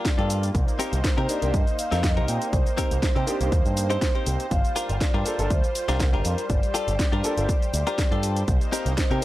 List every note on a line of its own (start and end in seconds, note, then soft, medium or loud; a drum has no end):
0.00 0.51 G3 medium
0.00 0.51 A#3 medium
0.00 0.51 F4 medium
0.00 0.26 D5 medium
0.05 kick loud
0.05 snare loud
0.05 closed hi-hat medium
0.05 shaker soft
0.18 0.49 G2 loud
0.18 0.49 D4 medium
0.18 0.49 F4 medium
0.18 0.49 G4 medium
0.18 0.49 A4 medium
0.18 closed hi-hat soft
0.30 open hi-hat loud
0.30 shaker medium
0.43 closed hi-hat soft
0.43 shaker soft
0.54 0.64 C2 loud
0.54 4.47 A#3 medium
0.54 4.47 D#4 medium
0.54 2.51 C5 medium
0.54 kick loud
0.54 closed hi-hat soft
0.54 shaker soft
0.68 closed hi-hat soft
0.68 shaker soft
0.79 0.98 C4 loud
0.79 0.98 D#4 loud
0.79 0.98 G4 loud
0.79 0.99 A#4 loud
0.79 open hi-hat loud
0.79 shaker medium
0.93 1.01 C2 loud
0.93 closed hi-hat medium
0.93 shaker soft
1.04 1.30 C5 loud
1.04 kick loud
1.04 snare loud
1.04 closed hi-hat medium
1.04 shaker soft
1.17 1.26 C3 loud
1.17 1.54 C4 medium
1.17 1.54 D#4 medium
1.17 1.54 G4 medium
1.17 1.54 A#4 medium
1.17 closed hi-hat soft
1.28 1.37 A#3 medium
1.28 1.37 D4 medium
1.28 1.37 D#4 medium
1.28 1.37 G4 medium
1.28 1.52 D5 loud
1.28 open hi-hat loud
1.28 shaker medium
1.42 1.50 C2 medium
1.42 1.49 A#3 loud
1.42 1.49 D4 medium
1.42 1.49 D#4 medium
1.42 1.49 G4 loud
1.42 closed hi-hat soft
1.42 shaker soft
1.54 1.63 G2 medium
1.54 1.79 D#5 loud
1.54 kick loud
1.54 closed hi-hat medium
1.54 shaker soft
1.67 closed hi-hat soft
1.67 shaker soft
1.79 2.04 F5 loud
1.79 open hi-hat loud
1.79 shaker medium
1.91 2.18 F2 medium
1.91 2.03 C4 loud
1.91 2.03 D#4 medium
1.91 2.03 G4 loud
1.91 2.04 A#4 loud
1.91 snare soft
1.91 closed hi-hat medium
1.91 shaker soft
2.03 2.26 D#5 loud
2.03 kick loud
2.03 snare loud
2.03 closed hi-hat medium
2.03 shaker soft
2.16 2.25 C2 medium
2.16 2.47 C4 medium
2.16 2.47 D#4 medium
2.16 2.47 G4 medium
2.16 2.47 A#4 medium
2.16 closed hi-hat soft
2.28 2.38 A#2 medium
2.28 2.47 G5 loud
2.28 open hi-hat loud
2.28 shaker medium
2.42 closed hi-hat soft
2.42 shaker soft
2.46 2.53 D5 medium
2.53 2.62 C2 loud
2.53 8.44 C5 medium
2.53 3.76 C5 loud
2.53 kick loud
2.53 closed hi-hat soft
2.53 shaker soft
2.66 closed hi-hat soft
2.66 shaker soft
2.77 2.97 C4 loud
2.77 2.97 D#4 medium
2.77 2.97 G4 loud
2.77 2.97 A#4 loud
2.77 kick medium
2.77 open hi-hat loud
2.77 shaker medium
2.91 2.99 C2 loud
2.91 closed hi-hat medium
2.91 shaker soft
3.03 kick loud
3.03 snare loud
3.03 closed hi-hat medium
3.03 shaker soft
3.15 3.24 C3 loud
3.15 3.52 C4 medium
3.15 3.52 D#4 medium
3.15 3.52 G4 medium
3.15 3.52 C5 medium
3.15 closed hi-hat soft
3.27 3.35 A#3 loud
3.27 3.35 D4 medium
3.27 3.35 D#4 medium
3.27 3.36 G4 loud
3.27 open hi-hat loud
3.27 shaker medium
3.40 3.49 C2 medium
3.40 3.52 A#3 medium
3.40 3.52 D4 medium
3.40 3.52 D#4 medium
3.40 3.52 G4 medium
3.40 closed hi-hat soft
3.40 shaker soft
3.52 3.61 D#2 loud
3.52 kick loud
3.52 closed hi-hat soft
3.52 shaker soft
3.65 3.96 G2 medium
3.65 closed hi-hat soft
3.65 shaker soft
3.77 4.28 C5 medium
3.77 open hi-hat loud
3.77 shaker medium
3.90 4.01 C4 medium
3.90 4.02 D#4 medium
3.90 4.02 G4 loud
3.90 4.00 C5 loud
3.90 closed hi-hat medium
3.90 shaker soft
4.02 kick loud
4.02 snare loud
4.02 closed hi-hat medium
4.02 shaker soft
4.15 4.45 C4 medium
4.15 4.46 D#4 medium
4.15 4.46 G4 medium
4.15 4.46 C5 medium
4.15 closed hi-hat soft
4.26 4.36 C2 medium
4.26 4.50 G5 loud
4.26 open hi-hat loud
4.26 shaker medium
4.40 closed hi-hat soft
4.40 shaker soft
4.51 4.61 G1 medium
4.51 8.44 G3 medium
4.51 6.48 F4 medium
4.51 5.02 F5 loud
4.51 kick loud
4.51 closed hi-hat soft
4.51 shaker soft
4.65 closed hi-hat soft
4.65 shaker soft
4.76 4.95 D4 loud
4.76 4.95 F4 medium
4.76 4.95 G4 loud
4.76 4.95 A#4 loud
4.76 open hi-hat loud
4.76 shaker medium
4.89 4.98 G1 loud
4.89 closed hi-hat medium
4.89 shaker soft
5.01 5.52 D5 medium
5.01 kick loud
5.01 snare loud
5.01 closed hi-hat soft
5.01 shaker soft
5.14 5.22 G2 loud
5.14 5.50 D4 medium
5.14 5.50 F4 medium
5.14 5.50 G4 medium
5.14 5.51 A#4 medium
5.14 closed hi-hat soft
5.25 5.33 A#3 medium
5.25 5.34 D4 medium
5.25 5.34 F4 medium
5.25 5.34 A4 medium
5.25 open hi-hat loud
5.25 shaker medium
5.38 5.47 G1 medium
5.38 5.46 A#3 loud
5.38 5.46 D4 medium
5.38 5.46 F4 medium
5.38 5.46 A4 loud
5.38 closed hi-hat soft
5.38 shaker soft
5.50 5.60 D2 medium
5.50 6.02 C5 medium
5.50 kick loud
5.50 closed hi-hat medium
5.50 shaker soft
5.64 closed hi-hat soft
5.64 shaker soft
5.75 open hi-hat loud
5.75 shaker medium
5.88 6.15 C2 medium
5.88 6.00 D4 loud
5.88 6.00 F4 loud
5.88 6.00 G4 loud
5.88 6.00 A#4 loud
5.88 snare soft
5.88 closed hi-hat soft
5.88 shaker soft
6.00 6.46 A#4 medium
6.00 kick loud
6.00 snare loud
6.00 closed hi-hat medium
6.00 shaker soft
6.13 6.21 G1 medium
6.13 6.44 D4 medium
6.13 6.44 F4 medium
6.13 6.44 G4 medium
6.13 6.44 A#4 medium
6.13 closed hi-hat soft
6.25 6.34 F2 medium
6.25 open hi-hat loud
6.25 shaker medium
6.38 closed hi-hat soft
6.38 shaker soft
6.50 6.59 G1 medium
6.50 8.46 G4 medium
6.50 6.74 D5 loud
6.50 kick loud
6.50 closed hi-hat medium
6.50 shaker soft
6.63 closed hi-hat soft
6.63 shaker soft
6.74 6.93 D4 medium
6.74 6.93 F4 medium
6.74 6.93 G4 loud
6.74 6.94 A4 loud
6.74 8.19 D5 medium
6.74 open hi-hat loud
6.74 shaker medium
6.88 6.96 G1 loud
6.88 closed hi-hat medium
6.88 shaker soft
6.99 kick loud
6.99 snare loud
6.99 closed hi-hat medium
6.99 shaker soft
7.12 7.21 G2 loud
7.12 7.49 D4 medium
7.12 7.49 F4 medium
7.12 7.49 G4 medium
7.12 7.49 A#4 medium
7.12 closed hi-hat soft
7.23 7.32 A#3 loud
7.23 7.32 D4 medium
7.23 7.32 F4 medium
7.23 7.32 A4 loud
7.23 open hi-hat loud
7.23 shaker medium
7.37 7.45 G1 medium
7.37 7.48 A#3 medium
7.37 7.48 D4 medium
7.37 7.48 F4 medium
7.37 7.49 A4 medium
7.37 closed hi-hat soft
7.37 shaker soft
7.49 kick loud
7.49 closed hi-hat medium
7.49 shaker soft
7.62 closed hi-hat soft
7.62 shaker soft
7.73 7.83 D2 medium
7.73 open hi-hat loud
7.73 shaker medium
7.87 7.98 D4 loud
7.87 7.98 F4 medium
7.87 7.98 G4 loud
7.87 7.99 A#4 loud
7.87 closed hi-hat medium
7.87 shaker soft
7.98 kick loud
7.98 snare loud
7.98 closed hi-hat medium
7.98 shaker soft
8.11 8.42 G2 loud
8.11 8.42 D4 medium
8.11 8.42 F4 medium
8.11 8.42 G4 medium
8.11 8.42 A4 medium
8.11 closed hi-hat soft
8.23 open hi-hat loud
8.23 shaker medium
8.37 closed hi-hat medium
8.37 shaker soft
8.48 8.57 C2 medium
8.48 9.24 A#3 medium
8.48 9.24 D#4 medium
8.48 9.24 C5 medium
8.48 kick loud
8.48 closed hi-hat medium
8.48 shaker soft
8.61 closed hi-hat soft
8.61 shaker soft
8.72 8.92 C4 loud
8.72 8.92 D#4 medium
8.72 8.92 G4 loud
8.72 8.92 A#4 loud
8.72 open hi-hat loud
8.72 shaker medium
8.86 8.94 C2 loud
8.86 closed hi-hat medium
8.86 shaker soft
8.98 9.21 C5 medium
8.98 kick loud
8.98 snare loud
8.98 closed hi-hat medium
8.98 shaker soft
9.10 9.19 C3 loud
9.10 9.24 C4 medium
9.10 9.24 D#4 medium
9.10 9.24 G4 medium
9.10 9.24 A#4 medium
9.10 closed hi-hat soft